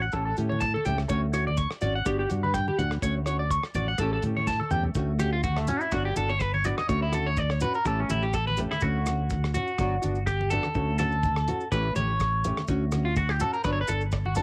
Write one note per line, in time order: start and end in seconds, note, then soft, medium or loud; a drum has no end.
0.02 0.11 F#5 medium
0.12 0.32 A1 medium
0.12 0.28 E3 medium
0.12 0.29 C#4 medium
0.12 0.29 G4 medium
0.12 0.24 A4 medium
0.12 muted nylon-string guitar stroke medium
0.12 kick medium
0.12 cross-stick medium
0.12 maracas loud
0.25 0.35 A4 medium
0.36 0.75 A2 medium
0.36 0.54 A3 soft
0.36 0.54 C#4 medium
0.36 0.53 G4 medium
0.36 closed hi-hat medium
0.36 high conga medium
0.36 maracas medium
0.49 0.59 C#5 medium
0.49 high conga medium
0.60 0.72 A5 medium
0.60 kick medium
0.60 cross-stick medium
0.60 low conga medium
0.60 maracas medium
0.74 0.84 A4 medium
0.74 high conga medium
0.85 1.05 C#2 loud
0.85 1.02 A3 medium
0.85 1.02 C#4 medium
0.85 1.01 G4 medium
0.85 0.96 G5 medium
0.85 closed hi-hat soft
0.85 low conga medium
0.85 maracas medium
0.98 cross-stick medium
1.09 1.66 D2 medium
1.09 1.25 A3 medium
1.09 1.25 C#4 medium
1.09 1.26 F#4 loud
1.09 1.20 C#5 medium
1.09 kick medium
1.09 maracas medium
1.33 1.50 C#4 soft
1.33 1.49 F#4 medium
1.33 1.45 C#5 medium
1.33 cross-stick medium
1.33 closed hi-hat soft
1.33 maracas medium
1.47 1.56 D5 medium
1.47 high conga medium
1.57 1.69 C#6 medium
1.57 kick medium
1.57 maracas medium
1.71 cross-stick medium
1.81 2.01 G#1 medium
1.81 1.98 C#4 medium
1.81 1.97 F#4 medium
1.81 1.93 D5 medium
1.81 closed hi-hat soft
1.81 low conga medium
1.81 maracas medium
1.96 2.05 F#5 medium
2.06 2.25 G1 medium
2.06 2.22 B3 medium
2.06 2.22 D4 medium
2.06 2.22 F#4 medium
2.06 2.17 G4 medium
2.06 kick medium
2.06 cross-stick medium
2.06 maracas medium
2.19 2.29 G4 medium
2.29 2.68 G2 medium
2.29 2.46 D4 soft
2.29 2.45 F#4 medium
2.29 closed hi-hat soft
2.29 high conga medium
2.29 maracas medium
2.43 2.53 B4 medium
2.43 high conga medium
2.54 2.65 G5 medium
2.54 kick medium
2.54 cross-stick medium
2.54 low conga medium
2.54 maracas medium
2.68 2.77 G4 medium
2.68 high conga medium
2.79 2.98 D2 loud
2.79 2.95 D4 soft
2.79 2.94 F#4 medium
2.79 2.90 F#5 medium
2.79 closed hi-hat soft
2.79 low conga medium
2.79 maracas medium
2.91 cross-stick medium
3.02 3.58 D2 medium
3.02 3.18 A3 medium
3.02 3.19 C#4 medium
3.02 3.19 F#4 medium
3.02 3.14 C#5 medium
3.02 kick medium
3.02 maracas medium
3.26 3.44 C#4 soft
3.26 3.43 F#4 medium
3.26 3.38 C#5 medium
3.26 cross-stick medium
3.26 closed hi-hat soft
3.26 maracas medium
3.39 3.49 D5 medium
3.51 3.62 C#6 medium
3.51 kick medium
3.51 maracas medium
3.63 cross-stick medium
3.74 3.94 A1 medium
3.74 3.92 C#4 soft
3.74 3.91 F#4 medium
3.74 3.86 D5 medium
3.74 closed hi-hat soft
3.74 high conga medium
3.74 low conga medium
3.74 maracas medium
3.88 3.98 F#5 medium
3.98 4.18 A1 medium
3.98 4.15 E3 medium
3.98 4.16 A3 medium
3.98 4.16 C#4 medium
3.98 4.16 G4 medium
3.98 4.10 A4 medium
3.98 kick medium
3.98 cross-stick medium
3.98 maracas medium
4.13 4.22 A4 medium
4.22 4.60 A2 medium
4.22 4.40 C#4 medium
4.22 4.40 G4 medium
4.22 closed hi-hat soft
4.22 high conga medium
4.22 low conga medium
4.22 maracas medium
4.26 4.41 A3 soft
4.36 4.46 C#5 medium
4.36 high conga medium
4.47 4.58 A5 medium
4.47 kick medium
4.47 snare soft
4.47 low conga medium
4.47 maracas medium
4.60 4.69 A4 medium
4.60 high conga medium
4.71 4.90 E2 medium
4.71 4.88 A3 soft
4.71 4.88 C#4 medium
4.71 4.88 G4 medium
4.71 4.82 G5 medium
4.71 mid tom medium
4.71 low conga medium
4.71 maracas medium
4.83 floor tom medium
4.94 5.70 D2 medium
4.94 5.11 A3 medium
4.94 5.11 C#4 medium
4.94 5.12 F#4 medium
4.94 kick medium
4.94 maracas medium
5.18 5.36 C#4 soft
5.18 5.35 F#4 medium
5.18 5.32 G4 medium
5.18 cross-stick medium
5.18 closed hi-hat soft
5.18 high conga medium
5.18 maracas loud
5.33 5.43 F4 medium
5.43 5.57 F#4 medium
5.43 kick medium
5.43 high conga medium
5.43 maracas medium
5.56 5.68 A3 medium
5.56 cross-stick medium
5.67 5.81 C#4 medium
5.67 5.85 C#4 soft
5.67 5.84 F#4 medium
5.67 closed hi-hat soft
5.67 low conga medium
5.67 maracas medium
5.81 5.92 E4 medium
5.81 maracas soft
5.91 6.11 G1 medium
5.91 6.08 F#3 medium
5.91 6.08 B3 medium
5.91 6.08 D4 medium
5.91 6.05 F#4 medium
5.91 6.09 F#4 medium
5.91 kick medium
5.91 cross-stick medium
5.91 maracas medium
6.05 6.16 G4 medium
6.16 6.73 G1 medium
6.16 6.32 D4 soft
6.16 6.32 F#4 medium
6.16 6.30 A4 medium
6.16 closed hi-hat soft
6.16 high conga medium
6.16 maracas medium
6.29 6.42 C#5 medium
6.29 maracas soft
6.40 6.54 B4 medium
6.40 kick medium
6.40 cross-stick medium
6.40 maracas medium
6.54 6.65 C#5 medium
6.54 high conga medium
6.64 6.81 B3 medium
6.64 6.81 D4 soft
6.64 6.80 F#4 medium
6.64 6.78 D5 loud
6.64 closed hi-hat medium
6.64 low conga medium
6.64 maracas medium
6.78 6.89 D#5 medium
6.78 cross-stick medium
6.78 high conga medium
6.89 7.63 D2 loud
6.89 7.04 A3 medium
6.89 7.04 C#4 medium
6.89 7.05 F#4 medium
6.89 7.02 C#5 medium
6.89 kick medium
6.89 maracas medium
7.02 7.13 E4 medium
7.12 7.29 C#4 soft
7.12 7.28 F#4 medium
7.12 7.27 A4 medium
7.12 cross-stick medium
7.12 closed hi-hat soft
7.12 high conga medium
7.12 maracas medium
7.27 7.38 C#5 medium
7.37 7.51 D5 loud
7.37 kick medium
7.37 high conga medium
7.37 maracas medium
7.50 7.61 C#5 medium
7.50 cross-stick medium
7.61 7.78 C#4 soft
7.61 7.77 F#4 medium
7.61 7.75 B4 medium
7.61 closed hi-hat medium
7.61 low conga medium
7.61 maracas medium
7.74 7.86 A#4 medium
7.74 maracas soft
7.85 8.04 A1 medium
7.85 8.01 E3 medium
7.85 8.01 A3 medium
7.85 8.01 C#4 medium
7.85 8.01 G4 medium
7.85 7.99 A4 medium
7.85 kick medium
7.85 cross-stick medium
7.85 maracas medium
8.00 8.10 C#4 soft
8.09 8.65 A1 medium
8.09 8.26 A3 soft
8.09 8.25 C#4 medium
8.09 8.23 E4 medium
8.09 8.25 G4 medium
8.09 closed hi-hat medium
8.09 high conga medium
8.09 maracas medium
8.23 8.34 G4 medium
8.23 maracas soft
8.33 8.47 A4 medium
8.33 kick medium
8.33 cross-stick medium
8.33 maracas medium
8.47 8.58 B4 medium
8.47 high conga medium
8.57 8.74 A3 soft
8.57 8.73 C#4 medium
8.57 8.73 G4 medium
8.57 muted clean electric guitar stroke medium
8.57 closed hi-hat medium
8.57 low conga medium
8.57 maracas medium
8.71 8.82 E4 medium
8.71 cross-stick medium
8.71 high conga medium
8.81 9.56 D2 medium
8.81 8.97 A3 medium
8.81 8.97 C#4 medium
8.81 9.50 F#4 medium
8.81 8.98 F#4 medium
8.81 kick medium
8.81 maracas medium
9.06 9.22 C#4 soft
9.06 9.21 F#4 medium
9.06 cross-stick medium
9.06 closed hi-hat soft
9.06 high conga medium
9.06 maracas medium
9.30 kick medium
9.30 high conga medium
9.30 maracas medium
9.44 cross-stick medium
9.54 9.70 C#4 medium
9.54 9.70 F#4 medium
9.54 10.23 F#4 medium
9.54 closed hi-hat soft
9.54 low conga medium
9.54 maracas medium
9.68 maracas soft
9.78 9.97 G1 medium
9.78 9.94 F#3 medium
9.78 9.94 B3 medium
9.78 9.95 D4 medium
9.78 9.95 F#4 medium
9.78 kick medium
9.78 cross-stick medium
9.78 maracas medium
10.02 10.59 G1 medium
10.02 10.18 B3 soft
10.02 10.18 D4 medium
10.02 10.17 F#4 medium
10.02 closed hi-hat soft
10.02 high conga medium
10.02 maracas medium
10.15 maracas soft
10.26 10.50 G4 medium
10.26 kick medium
10.26 cross-stick medium
10.26 maracas medium
10.41 high conga medium
10.50 10.67 B3 soft
10.50 10.67 D4 medium
10.50 10.66 F#4 medium
10.50 10.98 A4 loud
10.50 closed hi-hat medium
10.50 low conga medium
10.50 maracas medium
10.63 cross-stick medium
10.63 high conga medium
10.74 11.49 D2 loud
10.74 10.90 A3 medium
10.74 10.90 C#4 medium
10.74 10.91 F#4 medium
10.74 kick medium
10.74 maracas medium
10.98 11.15 C#4 medium
10.98 11.14 F#4 medium
10.98 11.67 A4 medium
10.98 cross-stick medium
10.98 closed hi-hat soft
10.98 high conga medium
10.98 low conga medium
10.98 maracas medium
11.12 maracas soft
11.23 kick medium
11.23 high conga medium
11.23 low conga medium
11.23 maracas medium
11.36 cross-stick medium
11.47 11.64 C#4 soft
11.47 11.63 F#4 medium
11.47 closed hi-hat medium
11.47 low conga medium
11.60 maracas soft
11.71 11.90 A1 medium
11.71 11.87 E3 medium
11.71 11.87 A3 medium
11.71 11.87 C#4 medium
11.71 11.88 G4 medium
11.71 11.95 B4 medium
11.71 kick medium
11.71 cross-stick medium
11.71 maracas medium
11.95 12.51 A1 medium
11.95 12.12 A3 soft
11.95 12.11 C#4 soft
11.95 12.10 G4 medium
11.95 12.64 C#5 medium
11.95 closed hi-hat soft
11.95 high conga medium
11.95 maracas medium
12.19 kick medium
12.19 cross-stick medium
12.19 maracas medium
12.44 12.60 A3 soft
12.44 12.60 C#4 medium
12.44 12.59 G4 medium
12.44 closed hi-hat medium
12.44 low conga medium
12.44 maracas medium
12.57 cross-stick medium
12.57 high conga medium
12.57 maracas soft
12.67 13.42 D2 loud
12.67 12.83 A3 medium
12.67 12.83 C#4 loud
12.67 12.84 F#4 medium
12.67 kick medium
12.67 maracas medium
12.91 13.08 C#4 medium
12.91 13.07 F#4 medium
12.91 cross-stick medium
12.91 closed hi-hat medium
12.91 high conga medium
12.91 maracas medium
13.05 13.16 F4 medium
13.16 13.30 F#4 medium
13.16 kick medium
13.16 high conga medium
13.16 maracas medium
13.29 13.40 G4 medium
13.29 cross-stick medium
13.40 13.56 C#4 soft
13.40 13.55 F#4 medium
13.40 13.53 A4 medium
13.40 closed hi-hat soft
13.40 low conga medium
13.40 maracas medium
13.53 13.64 A#4 medium
13.53 maracas soft
13.64 13.83 G1 medium
13.64 13.79 F#3 medium
13.64 13.80 D4 medium
13.64 13.72 B4 medium
13.64 muted nylon-string guitar stroke medium
13.64 kick medium
13.64 cross-stick medium
13.64 maracas medium
13.73 13.80 C#5 medium
13.81 13.88 B4 medium
13.87 14.43 G1 medium
13.87 14.04 D4 soft
13.87 14.01 A4 medium
13.87 muted nylon-string guitar stroke soft
13.87 closed hi-hat soft
13.87 high conga medium
13.87 maracas medium
14.01 maracas soft
14.12 muted clean electric guitar stroke loud
14.12 kick medium
14.12 cross-stick medium
14.12 maracas medium
14.25 14.36 F#4 medium
14.25 high conga medium
14.35 14.43 B3 soft
14.35 14.43 D4 medium
14.35 14.43 F#4 medium
14.35 14.43 A4 medium
14.35 closed hi-hat medium
14.35 low conga medium
14.35 maracas medium